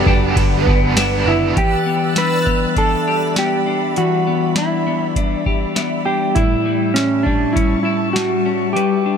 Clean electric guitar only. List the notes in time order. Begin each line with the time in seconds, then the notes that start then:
Already playing: F#3 B3
0.07 D4
0.37 D3
0.66 B3
0.97 D4
1.27 B3
1.56 E3 G4
1.86 B3
2.16 D4
2.46 B3
2.77 D4
3.08 G4
3.37 B3
3.67 D4
3.97 E3
4.27 B3
4.57 D4
4.87 B3
5.17 D4
5.46 G4
5.75 B3
6.06 D4
6.36 A2 E4
6.66 G3
7.26 G3
7.56 C#4
7.85 E4
8.16 G3
8.46 C#4
8.76 G3 B4
9.06 D4